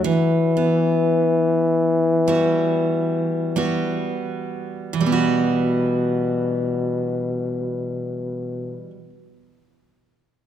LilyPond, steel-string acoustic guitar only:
\new Staff \with { instrumentName = "Steel-string acoustic guitar" } { \time 4/4 \key e \minor \tempo 4 = 44 e8 b4. <g b fis'>4 <g b fis'>4 | <e g b fis'>1 | }